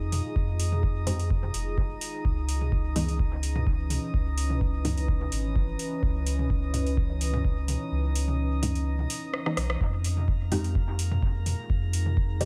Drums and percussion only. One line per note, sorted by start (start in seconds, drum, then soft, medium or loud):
0.12 open hi-hat medium
0.12 high tom medium
0.36 kick loud
0.60 open hi-hat medium
0.72 high tom medium
0.83 kick loud
1.07 mid tom medium
1.07 open hi-hat medium
1.20 open hi-hat soft
1.30 kick loud
1.43 high tom medium
1.54 open hi-hat medium
1.78 kick loud
2.01 open hi-hat medium
2.25 kick loud
2.49 open hi-hat medium
2.61 high tom medium
2.72 kick loud
2.96 mid tom medium
2.96 open hi-hat medium
3.09 open hi-hat soft
3.19 kick loud
3.43 open hi-hat medium
3.56 mid tom medium
3.56 high tom medium
3.67 kick loud
3.90 open hi-hat medium
3.90 high tom medium
4.14 kick loud
4.38 open hi-hat medium
4.50 high tom medium
4.61 kick loud
4.85 mid tom medium
4.85 open hi-hat medium
4.97 open hi-hat soft
5.08 kick loud
5.21 high tom medium
5.32 open hi-hat medium
5.56 kick loud
5.79 open hi-hat medium
6.03 kick loud
6.27 open hi-hat medium
6.39 high tom medium
6.50 kick loud
6.74 mid tom medium
6.74 open hi-hat medium
6.86 open hi-hat soft
6.97 kick loud
7.21 open hi-hat medium
7.34 mid tom medium
7.34 high tom medium
7.45 kick loud
7.68 open hi-hat medium
7.68 high tom medium
8.15 open hi-hat medium
8.28 high tom medium
8.63 mid tom medium
8.63 open hi-hat medium
8.75 open hi-hat soft
8.99 high tom medium
9.10 open hi-hat medium
9.34 cross-stick medium
9.46 cross-stick medium
9.57 cross-stick medium
9.57 open hi-hat medium
9.70 cross-stick medium
9.81 kick loud
10.04 open hi-hat medium
10.17 high tom medium
10.28 kick loud
10.52 mid tom medium
10.52 open hi-hat medium
10.64 open hi-hat soft
10.75 kick loud
10.99 open hi-hat medium
11.12 mid tom loud
11.12 high tom medium
11.23 kick loud
11.46 open hi-hat medium
11.46 high tom medium
11.70 kick loud
11.93 open hi-hat medium
12.06 high tom medium
12.17 kick loud
12.41 mid tom medium
12.41 open hi-hat medium